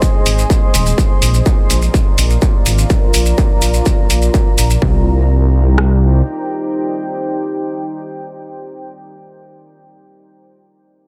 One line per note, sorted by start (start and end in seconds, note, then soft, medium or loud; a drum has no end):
0.00 0.94 G#4 medium
0.00 0.94 C5 medium
0.00 0.94 D#5 medium
0.00 0.94 C6 medium
0.00 kick loud
0.00 maracas soft
0.26 0.45 G#1 medium
0.26 open hi-hat medium
0.26 maracas medium
0.38 maracas soft
0.50 kick loud
0.50 maracas soft
0.74 0.93 D#1 medium
0.74 open hi-hat loud
0.74 maracas medium
0.86 maracas soft
0.98 4.78 F4 medium
0.98 4.78 A#4 medium
0.98 4.78 D5 medium
0.98 4.78 A#5 medium
0.98 kick loud
0.98 maracas soft
1.22 1.41 A#1 medium
1.22 open hi-hat medium
1.22 maracas medium
1.34 maracas soft
1.46 kick loud
1.46 maracas soft
1.70 1.89 A#1 medium
1.70 open hi-hat medium
1.70 maracas medium
1.82 maracas soft
1.94 kick loud
1.94 maracas soft
2.18 2.37 A#1 medium
2.18 open hi-hat medium
2.18 maracas medium
2.30 maracas soft
2.42 kick loud
2.42 maracas soft
2.66 2.85 G#1 medium
2.66 open hi-hat medium
2.66 maracas medium
2.78 maracas soft
2.90 kick loud
2.90 maracas soft
3.14 3.33 A#1 medium
3.14 open hi-hat medium
3.14 maracas medium
3.26 maracas soft
3.38 kick loud
3.38 maracas soft
3.62 3.81 A#1 medium
3.62 open hi-hat medium
3.62 maracas medium
3.74 maracas soft
3.85 kick loud
3.85 maracas soft
4.10 4.29 A#1 medium
4.10 open hi-hat medium
4.10 maracas medium
4.22 maracas soft
4.34 kick loud
4.34 maracas soft
4.58 4.77 A#1 medium
4.58 open hi-hat medium
4.58 maracas medium
4.70 maracas soft
4.82 6.22 C2 medium
4.82 9.40 D#4 medium
4.82 9.40 G4 medium
4.82 9.40 C5 medium
4.82 9.40 G5 medium
4.82 kick loud
5.78 cross-stick medium